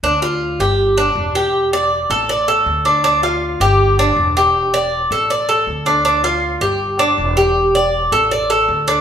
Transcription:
<<
  \new Staff \with { instrumentName = "Cuban tres" } { \time 4/4 \key d \minor \tempo 4 = 159 d'8 f'4 g'4 d'4 g'8~ | g'8 d''4 a'8 d''8 a'4 d'8 | d'8 f'4 g'4 d'4 g'8~ | g'8 d''4 a'8 d''8 a'4 d'8 |
d'8 f'4 g'4 d'4 g'8~ | g'8 d''4 a'8 d''8 a'4 d'8 | }
  \new Staff \with { instrumentName = "Upright bass" } { \clef bass \time 4/4 \key d \minor d,4. g,,4. e,,4~ | e,,4. a,,4. d,4~ | d,4. g,,4. e,,4~ | e,,4. a,,4. d,4~ |
d,4. g,,4. e,,4~ | e,,4. a,,4. d,4 | }
>>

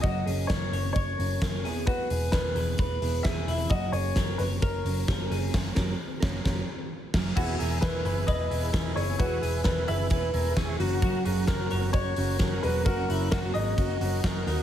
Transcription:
<<
  \new Staff \with { instrumentName = "Upright piano" } { \time 4/4 \key fis \mixolydian \tempo 4 = 131 dis''4 cis''4 cis''2 | b'4 b'2 e''4 | dis''8 cis''4 b'8 ais'2~ | ais'2. r4 |
r4 b'4 dis''4. cis''8 | b'4 b'8 e''2 r8 | r4 ais'4 cis''4. b'8 | ais'4 ais'8 dis''2 r8 | }
  \new Staff \with { instrumentName = "Clean electric guitar" } { \time 4/4 \key fis \mixolydian fis'8 gis'8 ais'8 cis''8 cis''4 ais'8 gis'8 | fis'8 gis'8 ais'8 b'8 b'4 gis'8 e'8 | fis'8 gis'8 ais'8 cis''8 cis''4 ais'8 gis'8 | r1 |
fis'8 gis'8 ais'8 b'8 b'4 ais'8 gis'8 | fis'8 gis'8 ais'8 b'8 b'4 gis'8 fis'8 | fis'8 gis'8 ais'8 cis''8 cis''4 ais'8 gis'8 | fis'8 e'8 fis'8 gis'8 fis'4 ais'8 ais'8 | }
  \new Staff \with { instrumentName = "Transistor combo organ" } { \time 4/4 \key fis \mixolydian r1 | r1 | r1 | r1 |
<e' gis' b'>8 <e' gis' ais'>8 <e' gis' b'>8 <e' gis' b'>8 <e' gis' b'>8 <e' gis' b'>8 <e' gis' b'>8 <e' gis' b'>8 | <e' gis' cis''>8 <e' gis' b'>8 <e' gis' b'>8 <e' gis' b'>8 <e' gis' b'>8 <e' gis' ais'>8 <e' gis' cis''>8 <cis' fis' ais'>8~ | <cis' fis' ais'>8 <cis' fis' ais'>8 <cis' fis' ais'>8 <cis' fis' ais'>8 <cis' fis' ais'>8 <cis' fis' ais'>8 <cis' fis' ais'>8 <cis' fis' ais'>8 | <cis' fis' ais'>8 <cis' fis' ais'>8 <cis' fis' ais'>8 <cis' fis' ais'>8 <cis' fis' ais'>8 <cis' fis' ais'>8 <cis' fis' ais'>8 <dis' fis' ais'>8 | }
  \new Staff \with { instrumentName = "Steel-string acoustic guitar" } { \time 4/4 \key fis \mixolydian <fis, cis fis ais cis' ais'>8 <fis ais cis' ais'>8 <fis ais cis' ais'>8 <fis ais cis' ais'>4 <fis ais cis' ais'>8 <fis ais cis' ais'>8 <e b e' gis'>8~ | <e b e' gis'>8 <b e' gis'>8 <e b e' gis'>8 <b e' gis'>4 <b e' gis'>8 <e b e' gis'>4 | <fis, cis fis ais cis' ais'>8 <fis ais cis' ais'>8 <fis ais cis' ais'>8 <fis ais cis' ais'>4 <fis ais cis' ais'>8 <fis ais cis' ais'>4 | <fis, cis fis ais cis' ais'>8 <fis ais cis' ais'>8 r8 <fis ais cis' ais'>8 <fis ais cis' ais'>8 r4 <fis ais cis' ais'>8 |
<e b e' gis'>4 <e b e' gis'>4. <b e' gis'>8 <e b e' gis'>8 <b e' gis'>8 | <e b e' gis'>4 <e b e' gis'>4. <b e' gis'>8 <e b e' gis'>8 <fis ais cis' fis'>8 | <fis, cis fis ais cis' fis'>4 <fis ais cis' fis'>4. <fis ais cis' fis'>8 <fis ais cis' fis'>8 <fis ais cis' fis'>8 | <fis, cis fis ais cis' fis'>4 <ais cis' fis'>4. <fis ais cis' fis'>8 <fis ais cis' fis'>8 <ais dis' fis'>8 | }
  \new Staff \with { instrumentName = "Picked electric bass" } { \clef bass \time 4/4 \key fis \mixolydian fis,,8 fis,,8 fis,,8 fis,,8 fis,,8 fis,,8 fis,,8 e,,8~ | e,,8 e,,8 e,,8 e,,8 e,,8 e,,8 e,,8 e,,8 | fis,,8 fis,,8 fis,,8 fis,,8 fis,,8 fis,,8 fis,,8 fis,,8 | fis,,8 fis,,8 r8 fis,,8 fis,,8 r4 fis,,8 |
e,,8 e,,8 e,,8 fis,,8 e,,8 e,,8 e,,8 fis,,8 | e,,8 e,,8 e,,8 fis,,8 e,,8 e,,8 e,,8 fis,,8~ | fis,,8 fis,,8 fis,,8 fis,,8 fis,,8 fis,,8 fis,,8 e,,8 | fis,,8 fis,,8 fis,,8 gis,,8 fis,,8 fis,,8 fis,,8 dis,8 | }
  \new DrumStaff \with { instrumentName = "Drums" } \drummode { \time 4/4 <hh bd>8 hho8 <hh bd sn>8 hho8 <hh bd>8 hho8 <hh bd sn>8 hho8 | <hh bd>8 hho8 <hh bd sn>8 hho8 <hh bd>8 hho8 <hh bd sn>8 hho8 | <hh bd>8 hho8 <hh bd sn>8 hho8 <hh bd>8 hho8 <hh bd sn>8 hho8 | <cymc bd sn>8 <bd sn>8 r8 <bd sn>8 <bd sn>4 r8 <cymc bd sn>8 |
<cymc bd>8 hho8 <hhp bd cymr sn>8 hho8 <hhp bd cymr>8 hho8 <hhp bd cymr sn>8 hho8 | <hhp bd cymr>8 hho8 <hhp bd cymr sn>8 hho8 <hhp bd cymr>8 hho8 <hhp bd cymr sn>8 hho8 | <hhp bd cymr>8 hho8 <hhp bd cymr sn>8 hho8 <hhp bd cymr>8 hho8 <hhp bd cymr sn>8 hho8 | <hhp bd cymr>8 hho8 <hhp bd cymr sn>8 hho8 <hhp bd cymr>8 hho8 <hhp bd cymr sn>8 hho8 | }
>>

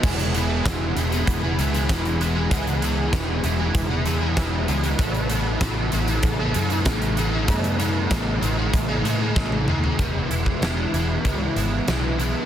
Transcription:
<<
  \new Staff \with { instrumentName = "Overdriven electric guitar" } { \time 4/4 \key e \major \tempo 4 = 96 <e gis b e' gis'>8 <gis b e' gis'>8 <e gis b e' gis'>8 <gis b e' gis'>16 <b e' gis'>8 <b e' gis'>16 <gis b e' gis'>16 <b e' gis'>16 <e gis b e' gis'>8 <gis b e' gis'>16 <b e' gis'>16 | <e gis b e' gis'>8 <gis b e' gis'>8 <e gis b e' gis'>8 <gis b e' gis'>16 <b e' gis'>8 <b e' gis'>16 <gis b e' gis'>16 <b e' gis'>16 <e gis b e' gis'>8 <gis b e' gis'>16 <b e' gis'>16 | <a b e' a'>8 <a b e' a'>8 <a b e' a'>8 <a b e' a'>16 <b e' a'>8 <b e' a'>16 <a b e' a'>16 <b e' a'>16 <a b e' a'>8 <a b e' a'>16 <b e' a'>16 | <a b e' a'>8 <a b e' a'>8 <a b e' a'>8 <a b e' a'>16 <b e' a'>8 <b e' a'>16 <a b e' a'>16 <b e' a'>16 <a b e' a'>8 <a b e' a'>16 <b e' a'>16 |
<e gis b e'>8 <gis b e'>8 <e gis b e'>8 <gis b e'>8 <e gis b e'>8 <gis b e'>8 <e gis b e'>8 <gis b e'>8 | }
  \new Staff \with { instrumentName = "Fingered electric bass" } { \clef bass \time 4/4 \key e \major e,,4 e,,8 e,,8 e,,8 cis,8 r4 | cis,4 e,,8 e,,8 e,,8 e,8 e,,8 cis,8 | a,,4 a,,8 a,,8 a,,8 fis,8 a,,4 | fis,4 a,,8 a,,8 a,,8 a,8 a,,8 dis,8 |
e,,8 e,,8 e,,8 e,,8 cis,8 gis,,8 b,,4 | }
  \new DrumStaff \with { instrumentName = "Drums" } \drummode { \time 4/4 <cymc bd>16 hh16 hh8 <hh bd sn>8 hh16 hh16 <hh bd>8 hh16 hh16 <hh bd sn>16 hh16 hh8 | <hh bd>16 hh16 hh8 <hh bd sn>8 hh8 <hh bd>8 hh8 <hh bd sn>8 hh16 hh16 | <hh bd>16 hh16 hh8 <hh bd sn>8 hh16 hh16 <hh bd>8 hh16 hh16 <hh bd sn>16 hh16 hh8 | <hh bd>16 hh16 hh8 <hh bd sn>8 hh8 <hh bd>8 hh8 <bd sn>16 tommh16 toml16 tomfh16 |
<hh bd>8 hh16 bd16 <hh sn>8 hh8 <hh bd>8 hh8 <hh sn>8 hh8 | }
>>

